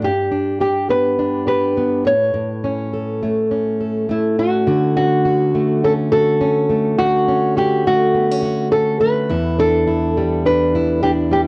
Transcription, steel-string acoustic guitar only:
0, 0, Header, 1, 2, 480
1, 0, Start_track
1, 0, Key_signature, 2, "major"
1, 0, Tempo, 578035
1, 30, Time_signature, 4, 2, 24, 8
1, 9526, End_track
2, 0, Start_track
2, 0, Title_t, "Steel-string acoustic guitar"
2, 0, Program_c, 0, 25
2, 0, Note_on_c, 0, 57, 56
2, 0, Note_on_c, 0, 62, 54
2, 0, Note_on_c, 0, 66, 60
2, 18, Note_on_c, 0, 43, 84
2, 84, Note_off_c, 0, 57, 0
2, 85, Note_off_c, 0, 62, 0
2, 88, Note_off_c, 0, 66, 0
2, 262, Note_on_c, 0, 62, 55
2, 502, Note_on_c, 0, 67, 60
2, 741, Note_on_c, 0, 59, 50
2, 977, Note_off_c, 0, 62, 0
2, 987, Note_on_c, 0, 62, 57
2, 1209, Note_off_c, 0, 67, 0
2, 1219, Note_on_c, 0, 67, 59
2, 1462, Note_off_c, 0, 59, 0
2, 1472, Note_on_c, 0, 59, 56
2, 1702, Note_on_c, 0, 45, 73
2, 1709, Note_off_c, 0, 43, 0
2, 1766, Note_off_c, 0, 67, 0
2, 1770, Note_off_c, 0, 62, 0
2, 1772, Note_off_c, 0, 59, 0
2, 1933, Note_off_c, 0, 45, 0
2, 1943, Note_on_c, 0, 45, 81
2, 2193, Note_on_c, 0, 61, 61
2, 2437, Note_on_c, 0, 69, 60
2, 2680, Note_on_c, 0, 57, 51
2, 2913, Note_off_c, 0, 61, 0
2, 2916, Note_on_c, 0, 61, 59
2, 3158, Note_off_c, 0, 69, 0
2, 3161, Note_on_c, 0, 69, 58
2, 3394, Note_off_c, 0, 57, 0
2, 3397, Note_on_c, 0, 57, 58
2, 3639, Note_off_c, 0, 61, 0
2, 3642, Note_on_c, 0, 61, 55
2, 3872, Note_off_c, 0, 45, 0
2, 3878, Note_on_c, 0, 50, 83
2, 3881, Note_off_c, 0, 69, 0
2, 3884, Note_on_c, 0, 66, 71
2, 4122, Note_off_c, 0, 61, 0
2, 4125, Note_on_c, 0, 61, 61
2, 4349, Note_off_c, 0, 66, 0
2, 4359, Note_on_c, 0, 66, 63
2, 4602, Note_off_c, 0, 57, 0
2, 4606, Note_on_c, 0, 57, 56
2, 4840, Note_off_c, 0, 61, 0
2, 4850, Note_on_c, 0, 61, 58
2, 5079, Note_off_c, 0, 66, 0
2, 5088, Note_on_c, 0, 66, 67
2, 5311, Note_off_c, 0, 61, 0
2, 5321, Note_on_c, 0, 61, 65
2, 5549, Note_off_c, 0, 57, 0
2, 5559, Note_on_c, 0, 57, 58
2, 5799, Note_off_c, 0, 66, 0
2, 5800, Note_off_c, 0, 50, 0
2, 5804, Note_on_c, 0, 50, 88
2, 5808, Note_on_c, 0, 66, 69
2, 6037, Note_off_c, 0, 61, 0
2, 6047, Note_on_c, 0, 61, 65
2, 6277, Note_off_c, 0, 66, 0
2, 6287, Note_on_c, 0, 66, 69
2, 6517, Note_off_c, 0, 57, 0
2, 6533, Note_on_c, 0, 57, 60
2, 6759, Note_off_c, 0, 61, 0
2, 6762, Note_on_c, 0, 59, 62
2, 6904, Note_off_c, 0, 59, 0
2, 6904, Note_on_c, 0, 61, 58
2, 6984, Note_off_c, 0, 66, 0
2, 6994, Note_on_c, 0, 66, 62
2, 7225, Note_off_c, 0, 61, 0
2, 7235, Note_on_c, 0, 61, 57
2, 7464, Note_off_c, 0, 57, 0
2, 7474, Note_on_c, 0, 57, 60
2, 7714, Note_off_c, 0, 66, 0
2, 7718, Note_on_c, 0, 40, 94
2, 7724, Note_on_c, 0, 64, 73
2, 7743, Note_off_c, 0, 50, 0
2, 7771, Note_off_c, 0, 57, 0
2, 7772, Note_off_c, 0, 61, 0
2, 7961, Note_on_c, 0, 62, 60
2, 8188, Note_off_c, 0, 64, 0
2, 8198, Note_on_c, 0, 64, 64
2, 8447, Note_on_c, 0, 55, 56
2, 8673, Note_off_c, 0, 62, 0
2, 8683, Note_on_c, 0, 62, 64
2, 8914, Note_off_c, 0, 64, 0
2, 8928, Note_on_c, 0, 64, 69
2, 9148, Note_off_c, 0, 62, 0
2, 9158, Note_on_c, 0, 62, 60
2, 9383, Note_off_c, 0, 55, 0
2, 9393, Note_on_c, 0, 55, 61
2, 9526, Note_off_c, 0, 40, 0
2, 9526, Note_off_c, 0, 55, 0
2, 9526, Note_off_c, 0, 62, 0
2, 9526, Note_off_c, 0, 64, 0
2, 9526, End_track
0, 0, End_of_file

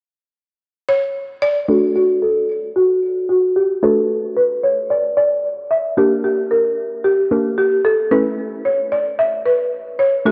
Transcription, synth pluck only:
0, 0, Header, 1, 2, 480
1, 0, Start_track
1, 0, Key_signature, 2, "major"
1, 0, Tempo, 535714
1, 1513, Time_signature, 4, 2, 24, 8
1, 9245, End_track
2, 0, Start_track
2, 0, Title_t, "Synth pluck"
2, 0, Program_c, 0, 84
2, 1508, Note_on_c, 0, 57, 65
2, 1511, Note_on_c, 0, 62, 61
2, 1514, Note_on_c, 0, 66, 59
2, 1517, Note_on_c, 0, 69, 73
2, 3395, Note_off_c, 0, 57, 0
2, 3396, Note_off_c, 0, 62, 0
2, 3398, Note_off_c, 0, 66, 0
2, 3399, Note_off_c, 0, 69, 0
2, 3428, Note_on_c, 0, 57, 66
2, 3431, Note_on_c, 0, 62, 61
2, 3434, Note_on_c, 0, 66, 62
2, 3437, Note_on_c, 0, 71, 72
2, 5315, Note_off_c, 0, 57, 0
2, 5316, Note_off_c, 0, 62, 0
2, 5318, Note_off_c, 0, 66, 0
2, 5319, Note_off_c, 0, 71, 0
2, 5349, Note_on_c, 0, 58, 66
2, 5352, Note_on_c, 0, 62, 64
2, 5355, Note_on_c, 0, 67, 60
2, 5358, Note_on_c, 0, 70, 76
2, 6527, Note_off_c, 0, 58, 0
2, 6528, Note_off_c, 0, 62, 0
2, 6530, Note_off_c, 0, 67, 0
2, 6531, Note_off_c, 0, 70, 0
2, 6551, Note_on_c, 0, 58, 51
2, 6552, Note_on_c, 0, 62, 46
2, 6554, Note_on_c, 0, 67, 46
2, 6555, Note_on_c, 0, 70, 53
2, 7269, Note_on_c, 0, 57, 66
2, 7271, Note_on_c, 0, 61, 61
2, 7272, Note_off_c, 0, 58, 0
2, 7272, Note_off_c, 0, 62, 0
2, 7273, Note_off_c, 0, 67, 0
2, 7274, Note_off_c, 0, 70, 0
2, 7274, Note_on_c, 0, 64, 63
2, 7277, Note_on_c, 0, 69, 75
2, 9155, Note_off_c, 0, 57, 0
2, 9156, Note_off_c, 0, 61, 0
2, 9158, Note_off_c, 0, 64, 0
2, 9159, Note_off_c, 0, 69, 0
2, 9188, Note_on_c, 0, 57, 66
2, 9191, Note_on_c, 0, 62, 60
2, 9194, Note_on_c, 0, 66, 62
2, 9197, Note_on_c, 0, 69, 75
2, 9245, Note_off_c, 0, 57, 0
2, 9245, Note_off_c, 0, 62, 0
2, 9245, Note_off_c, 0, 66, 0
2, 9245, Note_off_c, 0, 69, 0
2, 9245, End_track
0, 0, End_of_file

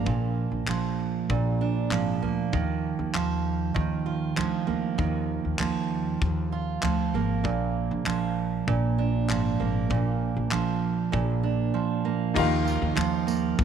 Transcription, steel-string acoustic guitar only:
0, 0, Header, 1, 2, 480
1, 0, Start_track
1, 0, Tempo, 614754
1, 54, Time_signature, 4, 2, 24, 8
1, 10651, End_track
2, 0, Start_track
2, 0, Title_t, "Steel-string acoustic guitar"
2, 0, Program_c, 0, 25
2, 0, Note_on_c, 0, 53, 64
2, 0, Note_on_c, 0, 58, 58
2, 0, Note_on_c, 0, 62, 53
2, 46, Note_on_c, 0, 46, 72
2, 533, Note_off_c, 0, 53, 0
2, 536, Note_on_c, 0, 53, 62
2, 1004, Note_off_c, 0, 46, 0
2, 1013, Note_on_c, 0, 46, 73
2, 1248, Note_off_c, 0, 62, 0
2, 1257, Note_on_c, 0, 62, 54
2, 1493, Note_off_c, 0, 53, 0
2, 1496, Note_on_c, 0, 53, 64
2, 1734, Note_off_c, 0, 58, 0
2, 1737, Note_on_c, 0, 58, 55
2, 1974, Note_on_c, 0, 51, 70
2, 2022, Note_off_c, 0, 46, 0
2, 2024, Note_off_c, 0, 62, 0
2, 2449, Note_off_c, 0, 53, 0
2, 2452, Note_on_c, 0, 53, 61
2, 2914, Note_off_c, 0, 51, 0
2, 2923, Note_on_c, 0, 51, 74
2, 3169, Note_on_c, 0, 65, 53
2, 3404, Note_off_c, 0, 53, 0
2, 3407, Note_on_c, 0, 53, 65
2, 3643, Note_off_c, 0, 58, 0
2, 3646, Note_on_c, 0, 58, 57
2, 3879, Note_off_c, 0, 51, 0
2, 3889, Note_on_c, 0, 51, 76
2, 4369, Note_off_c, 0, 53, 0
2, 4372, Note_on_c, 0, 53, 66
2, 4852, Note_off_c, 0, 51, 0
2, 5091, Note_off_c, 0, 65, 0
2, 5094, Note_on_c, 0, 65, 53
2, 5327, Note_off_c, 0, 53, 0
2, 5330, Note_on_c, 0, 53, 66
2, 5577, Note_off_c, 0, 58, 0
2, 5581, Note_on_c, 0, 58, 61
2, 5808, Note_on_c, 0, 46, 76
2, 6286, Note_off_c, 0, 53, 0
2, 6289, Note_on_c, 0, 53, 65
2, 6766, Note_off_c, 0, 46, 0
2, 6776, Note_on_c, 0, 46, 80
2, 7011, Note_off_c, 0, 65, 0
2, 7014, Note_on_c, 0, 62, 57
2, 7256, Note_off_c, 0, 53, 0
2, 7259, Note_on_c, 0, 53, 66
2, 7490, Note_off_c, 0, 58, 0
2, 7493, Note_on_c, 0, 58, 60
2, 7720, Note_off_c, 0, 46, 0
2, 7729, Note_on_c, 0, 46, 70
2, 8205, Note_off_c, 0, 53, 0
2, 8208, Note_on_c, 0, 53, 63
2, 8674, Note_off_c, 0, 46, 0
2, 8684, Note_on_c, 0, 46, 75
2, 8917, Note_off_c, 0, 62, 0
2, 8927, Note_on_c, 0, 62, 54
2, 9163, Note_off_c, 0, 53, 0
2, 9166, Note_on_c, 0, 53, 64
2, 9405, Note_off_c, 0, 58, 0
2, 9408, Note_on_c, 0, 58, 55
2, 9646, Note_on_c, 0, 51, 84
2, 9697, Note_off_c, 0, 46, 0
2, 9699, Note_off_c, 0, 62, 0
2, 9879, Note_on_c, 0, 65, 63
2, 10112, Note_off_c, 0, 53, 0
2, 10115, Note_on_c, 0, 53, 72
2, 10358, Note_off_c, 0, 58, 0
2, 10361, Note_on_c, 0, 58, 58
2, 10610, Note_off_c, 0, 51, 0
2, 10651, Note_off_c, 0, 53, 0
2, 10651, Note_off_c, 0, 58, 0
2, 10651, Note_off_c, 0, 65, 0
2, 10651, End_track
0, 0, End_of_file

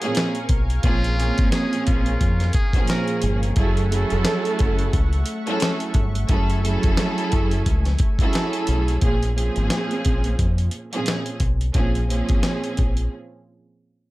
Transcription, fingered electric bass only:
0, 0, Header, 1, 2, 480
1, 0, Start_track
1, 0, Tempo, 681818
1, 591, Time_signature, 4, 2, 24, 8
1, 9931, End_track
2, 0, Start_track
2, 0, Title_t, "Fingered electric bass"
2, 0, Program_c, 0, 33
2, 351, Note_on_c, 0, 35, 94
2, 554, Note_off_c, 0, 35, 0
2, 593, Note_on_c, 0, 34, 110
2, 917, Note_off_c, 0, 34, 0
2, 979, Note_on_c, 0, 32, 94
2, 1058, Note_off_c, 0, 32, 0
2, 1323, Note_on_c, 0, 34, 92
2, 1521, Note_off_c, 0, 34, 0
2, 1557, Note_on_c, 0, 41, 100
2, 1757, Note_off_c, 0, 41, 0
2, 2276, Note_on_c, 0, 31, 93
2, 2477, Note_off_c, 0, 31, 0
2, 2514, Note_on_c, 0, 30, 115
2, 2837, Note_off_c, 0, 30, 0
2, 2900, Note_on_c, 0, 29, 96
2, 2979, Note_off_c, 0, 29, 0
2, 3244, Note_on_c, 0, 30, 99
2, 3441, Note_off_c, 0, 30, 0
2, 3476, Note_on_c, 0, 37, 88
2, 3677, Note_off_c, 0, 37, 0
2, 4189, Note_on_c, 0, 31, 96
2, 4393, Note_off_c, 0, 31, 0
2, 4433, Note_on_c, 0, 30, 114
2, 4757, Note_off_c, 0, 30, 0
2, 4817, Note_on_c, 0, 29, 90
2, 4897, Note_off_c, 0, 29, 0
2, 5162, Note_on_c, 0, 30, 98
2, 5360, Note_off_c, 0, 30, 0
2, 5396, Note_on_c, 0, 37, 96
2, 5597, Note_off_c, 0, 37, 0
2, 6114, Note_on_c, 0, 35, 94
2, 6316, Note_off_c, 0, 35, 0
2, 6353, Note_on_c, 0, 34, 98
2, 6677, Note_off_c, 0, 34, 0
2, 6738, Note_on_c, 0, 32, 89
2, 6818, Note_off_c, 0, 32, 0
2, 7083, Note_on_c, 0, 34, 91
2, 7281, Note_off_c, 0, 34, 0
2, 7317, Note_on_c, 0, 41, 87
2, 7517, Note_off_c, 0, 41, 0
2, 8030, Note_on_c, 0, 35, 89
2, 8233, Note_off_c, 0, 35, 0
2, 8273, Note_on_c, 0, 34, 104
2, 8597, Note_off_c, 0, 34, 0
2, 8659, Note_on_c, 0, 32, 87
2, 8738, Note_off_c, 0, 32, 0
2, 9003, Note_on_c, 0, 34, 87
2, 9201, Note_off_c, 0, 34, 0
2, 9931, End_track
0, 0, End_of_file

